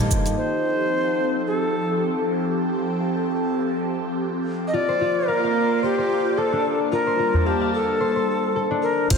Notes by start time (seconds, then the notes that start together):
Already playing: D#3 A#3 F4 G4 A4 C5 F5
0.00 D#4
0.11 G2, kick, cabasa
0.26 open hi-hat, cabasa
0.37 F3 C4 G4 A4 C5
1.47 A4
4.68 D#5
4.73 A#3 F4 C5 D5
4.89 C5
5.01 F4
5.28 A#4 F5
5.44 F5
5.83 G4 C5
5.98 C5
6.37 A4
6.53 D4
6.92 G3 A#3 D4 F4 A#4 A5
7.07 C5
7.19 F4
7.34 udu
7.46 G4 F5
7.61 F5
7.74 A4
8.01 C5
8.16 C5
8.56 A4
8.71 D4
8.82 A#4
9.10 F1 F4 C5, kick, crash, cabasa